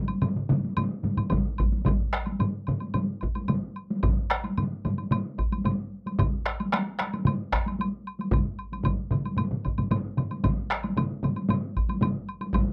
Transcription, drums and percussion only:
0.08 taiko high medium
0.08 high woodblock soft
0.22 taiko low-mid loud
0.22 taiko mid loud
0.22 taiko high medium
0.22 high woodblock soft
0.36 taiko low-mid medium
0.36 taiko mid medium
0.49 taiko low-mid loud
0.49 taiko mid medium
0.49 taiko high medium
0.64 taiko high medium
0.77 taiko low-mid medium
0.77 taiko mid medium
0.77 taiko high medium
0.77 high woodblock medium
1.04 taiko low-mid medium
1.04 taiko mid medium
1.04 taiko high medium
1.17 taiko low-mid medium
1.17 taiko mid medium
1.17 taiko high medium
1.17 high woodblock soft
1.30 taiko medium
1.30 taiko low-mid loud
1.30 taiko mid medium
1.30 taiko high medium
1.30 high woodblock soft
1.58 taiko medium
1.58 taiko high medium
1.58 high woodblock soft
1.72 taiko high medium
1.85 taiko medium
1.85 taiko low-mid medium
1.85 taiko mid medium
1.85 taiko high medium
1.85 high woodblock soft
2.13 taiko rim medium
2.13 high woodblock soft
2.26 taiko high soft
2.26 high woodblock soft
2.39 taiko low-mid medium
2.39 taiko mid medium
2.39 taiko high medium
2.39 high woodblock soft
2.67 taiko low-mid medium
2.67 taiko mid medium
2.67 taiko high soft
2.67 high woodblock soft
2.80 taiko high soft
2.80 high woodblock soft
2.94 taiko low-mid medium
2.94 taiko mid medium
2.94 taiko high medium
2.94 high woodblock soft
3.21 taiko medium
3.21 high woodblock soft
3.35 taiko high medium
3.35 high woodblock soft
3.48 taiko low-mid medium
3.48 taiko mid medium
3.48 taiko high medium
3.48 high woodblock soft
3.76 high woodblock soft
3.90 taiko high medium
4.03 taiko medium
4.03 taiko low-mid medium
4.03 taiko mid medium
4.03 taiko high medium
4.03 high woodblock soft
4.30 taiko rim medium
4.30 high woodblock soft
4.44 taiko high medium
4.44 high woodblock soft
4.58 taiko low-mid medium
4.58 taiko mid medium
4.58 taiko high medium
4.58 high woodblock soft
4.85 taiko low-mid medium
4.85 taiko mid medium
4.85 taiko high medium
4.85 high woodblock soft
4.98 taiko high medium
4.98 high woodblock soft
5.11 taiko low-mid medium
5.11 taiko mid medium
5.11 taiko high medium
5.11 high woodblock medium
5.38 taiko medium
5.38 high woodblock soft
5.52 taiko high soft
5.52 high woodblock soft
5.65 taiko low-mid medium
5.65 taiko mid medium
5.65 taiko high medium
5.65 high woodblock medium
6.06 taiko high medium
6.06 high woodblock soft
6.19 taiko loud
6.19 taiko low-mid medium
6.19 taiko mid medium
6.19 taiko high medium
6.19 high woodblock medium
6.46 taiko rim medium
6.46 high woodblock soft
6.60 taiko high medium
6.60 high woodblock soft
6.72 taiko rim medium
6.72 taiko high medium
6.72 high woodblock medium
6.99 taiko rim medium
6.99 taiko high soft
6.99 high woodblock soft
7.14 taiko high medium
7.14 high woodblock soft
7.25 taiko low-mid medium
7.25 taiko mid medium
7.25 taiko high medium
7.25 high woodblock medium
7.52 taiko rim medium
7.52 taiko medium
7.52 high woodblock soft
7.66 taiko high medium
7.66 high woodblock soft
7.80 taiko high medium
7.80 high woodblock medium
8.07 high woodblock soft
8.19 taiko high medium
8.19 high woodblock soft
8.32 taiko loud
8.32 taiko low-mid medium
8.32 taiko mid medium
8.32 taiko high medium
8.32 high woodblock soft
8.59 high woodblock soft
8.72 taiko high soft
8.72 high woodblock soft
8.84 taiko medium
8.84 taiko low-mid medium
8.84 taiko mid medium
8.84 taiko high medium
8.84 high woodblock medium
9.11 taiko low-mid medium
9.11 taiko mid medium
9.11 taiko high soft
9.11 high woodblock soft
9.25 taiko high soft
9.25 high woodblock soft
9.37 taiko low-mid medium
9.37 taiko mid medium
9.37 taiko high medium
9.37 high woodblock medium
9.51 taiko low-mid medium
9.51 taiko mid medium
9.65 taiko medium
9.65 taiko low-mid medium
9.65 taiko mid medium
9.65 high woodblock soft
9.78 taiko low-mid medium
9.78 taiko mid medium
9.78 taiko high medium
9.78 high woodblock soft
9.91 taiko low-mid medium
9.91 taiko mid medium
9.91 taiko high medium
9.91 high woodblock soft
10.17 taiko low-mid medium
10.17 taiko mid loud
10.17 high woodblock soft
10.31 taiko high medium
10.31 high woodblock soft
10.44 taiko medium
10.44 taiko low-mid medium
10.44 taiko mid loud
10.44 taiko high medium
10.44 high woodblock medium
10.70 taiko rim medium
10.70 high woodblock soft
10.83 taiko high medium
10.83 high woodblock soft
10.97 taiko low-mid medium
10.97 taiko mid loud
10.97 taiko high medium
10.97 high woodblock medium
11.23 taiko low-mid medium
11.23 taiko mid loud
11.23 taiko high medium
11.23 high woodblock soft
11.36 taiko high medium
11.36 high woodblock soft
11.49 taiko low-mid medium
11.49 taiko mid medium
11.49 taiko high medium
11.49 high woodblock medium
11.77 taiko medium
11.77 high woodblock soft
11.89 taiko high medium
11.89 high woodblock soft
12.01 taiko low-mid loud
12.01 taiko mid medium
12.01 taiko high medium
12.01 high woodblock medium
12.29 high woodblock soft
12.41 taiko high medium
12.41 high woodblock soft
12.54 taiko medium
12.54 taiko low-mid loud
12.54 taiko mid medium
12.54 taiko high medium
12.54 high woodblock medium

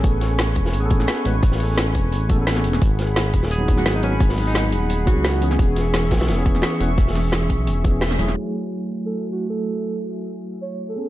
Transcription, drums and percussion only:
0.04 kick loud
0.04 closed hi-hat medium
0.21 snare soft
0.21 closed hi-hat medium
0.38 snare loud
0.38 closed hi-hat medium
0.55 kick medium
0.55 closed hi-hat medium
0.66 snare soft
0.73 closed hi-hat medium
0.90 kick loud
0.90 closed hi-hat medium
1.00 snare soft
1.08 snare loud
1.08 closed hi-hat medium
1.25 closed hi-hat medium
1.43 kick loud
1.43 closed hi-hat medium
1.52 snare soft
1.60 closed hi-hat medium
1.60 open hi-hat medium
1.78 snare loud
1.78 closed hi-hat medium
1.78 closed hi-hat loud
1.95 kick medium
1.95 closed hi-hat medium
2.12 closed hi-hat medium
2.30 kick loud
2.30 closed hi-hat medium
2.47 snare loud
2.47 closed hi-hat medium
2.56 snare medium
2.64 closed hi-hat medium
2.73 snare medium
2.82 kick loud
2.82 closed hi-hat medium
2.99 snare soft
2.99 closed hi-hat medium
3.16 snare loud
3.16 closed hi-hat medium
3.34 kick medium
3.34 closed hi-hat medium
3.43 snare medium
3.51 closed hi-hat medium
3.68 kick loud
3.68 closed hi-hat medium
3.77 snare soft
3.86 snare loud
3.86 closed hi-hat medium
4.03 closed hi-hat medium
4.20 kick loud
4.20 closed hi-hat medium
4.29 snare soft
4.38 closed hi-hat medium
4.38 open hi-hat medium
4.55 snare loud
4.55 closed hi-hat medium
4.72 closed hi-hat medium
4.90 closed hi-hat medium
5.07 kick loud
5.07 closed hi-hat medium
5.25 snare loud
5.25 closed hi-hat medium
5.42 closed hi-hat medium
5.51 snare medium
5.59 kick loud
5.59 closed hi-hat medium
5.76 snare soft
5.76 closed hi-hat loud
5.76 closed hi-hat medium
5.94 snare loud
5.94 closed hi-hat medium
6.11 kick medium
6.11 snare loud
6.11 closed hi-hat medium
6.20 snare loud
6.20 closed hi-hat medium
6.29 snare loud
6.29 closed hi-hat medium
6.46 kick loud
6.46 closed hi-hat medium
6.55 snare soft
6.62 snare loud
6.62 closed hi-hat medium
6.62 closed hi-hat loud
6.81 closed hi-hat medium
6.98 kick loud
6.98 closed hi-hat medium
7.07 snare soft
7.15 snare soft
7.15 closed hi-hat loud
7.15 open hi-hat medium
7.32 snare loud
7.32 closed hi-hat medium
7.49 kick medium
7.49 closed hi-hat medium
7.49 closed hi-hat loud
7.67 closed hi-hat medium
7.84 kick loud
7.84 closed hi-hat medium
7.84 closed hi-hat loud
8.01 snare loud
8.01 closed hi-hat medium
8.11 snare medium
8.19 closed hi-hat medium
8.19 closed hi-hat loud
8.28 snare medium
8.37 crash medium

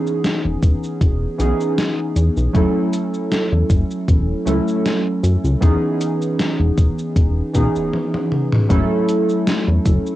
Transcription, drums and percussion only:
0.07 cabasa soft
0.24 snare loud
0.24 closed hi-hat medium
0.24 cabasa soft
0.62 kick loud
0.62 closed hi-hat medium
0.62 cabasa medium
0.83 cabasa soft
1.01 kick loud
1.01 closed hi-hat medium
1.01 cabasa soft
1.40 closed hi-hat medium
1.40 cabasa medium
1.60 cabasa soft
1.78 snare loud
1.78 closed hi-hat medium
1.78 cabasa soft
2.16 closed hi-hat medium
2.16 cabasa medium
2.37 cabasa soft
2.55 kick loud
2.55 closed hi-hat medium
2.55 cabasa soft
2.93 closed hi-hat medium
2.93 cabasa medium
3.14 cabasa soft
3.32 snare loud
3.32 closed hi-hat medium
3.32 cabasa soft
3.70 kick loud
3.70 closed hi-hat medium
3.70 cabasa medium
3.91 cabasa soft
4.08 kick loud
4.08 closed hi-hat medium
4.08 cabasa soft
4.47 closed hi-hat medium
4.47 cabasa medium
4.68 cabasa soft
4.86 snare loud
4.86 closed hi-hat medium
4.86 cabasa soft
5.24 closed hi-hat medium
5.24 cabasa medium
5.45 cabasa soft
5.62 kick loud
5.62 closed hi-hat medium
5.62 cabasa soft
6.01 closed hi-hat medium
6.01 cabasa medium
6.22 cabasa soft
6.39 snare loud
6.39 closed hi-hat medium
6.39 cabasa soft
6.78 kick loud
6.78 closed hi-hat medium
6.78 cabasa medium
6.99 cabasa soft
7.16 kick loud
7.16 closed hi-hat medium
7.16 cabasa soft
7.55 kick medium
7.55 closed hi-hat medium
7.55 cabasa medium
7.75 cabasa soft
7.93 high tom medium
8.14 high tom medium
8.32 mid tom medium
8.52 mid tom medium
8.70 kick loud
8.70 closed hi-hat medium
8.70 cabasa soft
9.09 closed hi-hat medium
9.09 cabasa medium
9.29 cabasa soft
9.47 snare loud
9.47 closed hi-hat medium
9.47 cabasa soft
9.86 kick loud
9.86 closed hi-hat medium
9.86 cabasa medium
10.06 cabasa soft

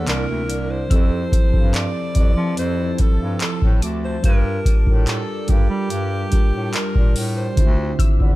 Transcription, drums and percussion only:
0.07 clap loud
0.07 closed hi-hat medium
0.50 closed hi-hat medium
0.91 kick loud
0.91 closed hi-hat medium
1.32 kick loud
1.32 closed hi-hat medium
1.54 kick medium
1.74 clap loud
1.74 closed hi-hat medium
2.15 kick loud
2.15 closed hi-hat medium
2.57 closed hi-hat medium
2.98 kick medium
2.98 closed hi-hat medium
3.40 clap loud
3.40 closed hi-hat medium
3.62 kick medium
3.82 closed hi-hat medium
4.24 kick loud
4.24 closed hi-hat medium
4.65 kick loud
4.65 closed hi-hat medium
4.87 kick medium
5.07 clap loud
5.07 closed hi-hat medium
5.48 kick loud
5.48 closed hi-hat medium
5.90 closed hi-hat medium
6.32 kick medium
6.32 closed hi-hat medium
6.73 clap loud
6.73 closed hi-hat medium
6.95 kick loud
7.16 open hi-hat medium
7.57 kick loud
7.57 closed hi-hat medium
7.99 kick loud
7.99 closed hi-hat medium
8.20 kick medium

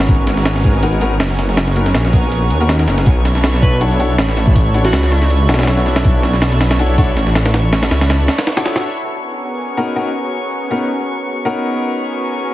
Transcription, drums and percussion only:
0.08 kick loud
0.08 open hi-hat medium
0.27 snare soft
0.27 open hi-hat medium
0.37 snare soft
0.45 snare loud
0.45 open hi-hat medium
0.56 snare soft
0.64 kick medium
0.64 open hi-hat medium
0.83 open hi-hat medium
0.93 closed hi-hat soft
1.01 open hi-hat medium
1.20 snare loud
1.20 open hi-hat medium
1.30 snare soft
1.39 snare soft
1.39 open hi-hat medium
1.49 snare soft
1.57 snare loud
1.57 open hi-hat medium
1.67 snare soft
1.76 open hi-hat medium
1.86 snare medium
1.94 snare loud
1.94 open hi-hat medium
2.05 snare soft
2.13 kick medium
2.13 open hi-hat medium
2.23 closed hi-hat soft
2.32 open hi-hat medium
2.50 open hi-hat medium
2.61 closed hi-hat soft
2.69 snare loud
2.69 open hi-hat medium
2.79 snare medium
2.88 snare medium
2.88 open hi-hat medium
2.98 snare medium
3.06 kick loud
3.06 open hi-hat medium
3.25 snare soft
3.25 open hi-hat medium
3.35 snare soft
3.44 snare loud
3.44 open hi-hat medium
3.54 snare soft
3.62 kick medium
3.62 open hi-hat medium
3.81 open hi-hat medium
3.91 closed hi-hat soft
4.00 open hi-hat medium
4.18 snare loud
4.18 open hi-hat medium
4.29 snare soft
4.37 snare soft
4.37 open hi-hat medium
4.47 kick loud
4.56 kick loud
4.56 open hi-hat medium
4.74 open hi-hat medium
4.85 snare medium
4.93 snare loud
4.93 open hi-hat medium
5.03 snare soft
5.12 snare soft
5.12 open hi-hat medium
5.22 snare soft
5.30 open hi-hat medium
5.49 snare medium
5.49 open hi-hat medium
5.54 snare medium
5.54 open hi-hat medium
5.59 snare medium
5.59 open hi-hat medium
5.63 snare medium
5.63 open hi-hat medium
5.67 snare loud
5.67 open hi-hat medium
5.78 snare soft
5.86 snare soft
5.86 open hi-hat medium
5.96 snare loud
5.96 open hi-hat medium
6.05 kick loud
6.05 open hi-hat medium
6.23 snare soft
6.23 open hi-hat medium
6.33 snare soft
6.42 snare loud
6.42 open hi-hat medium
6.52 snare soft
6.61 snare loud
6.61 open hi-hat medium
6.71 snare loud
6.71 open hi-hat medium
6.79 open hi-hat medium
6.90 closed hi-hat soft
6.98 kick loud
6.98 open hi-hat medium
7.17 snare soft
7.17 open hi-hat medium
7.27 snare soft
7.35 snare loud
7.35 open hi-hat medium
7.45 snare loud
7.45 open hi-hat medium
7.54 snare loud
7.54 open hi-hat medium
7.73 snare loud
7.73 open hi-hat medium
7.83 snare loud
7.83 open hi-hat medium
7.91 snare loud
7.91 open hi-hat medium
8.01 snare loud
8.01 open hi-hat medium
8.10 snare loud
8.10 open hi-hat medium
8.20 closed hi-hat soft
8.28 snare loud
8.28 open hi-hat medium
8.38 snare loud
8.38 open hi-hat medium
8.47 snare loud
8.47 open hi-hat medium
8.57 snare loud
8.57 open hi-hat medium
8.66 snare loud
8.66 open hi-hat medium
8.76 snare loud
8.76 open hi-hat medium

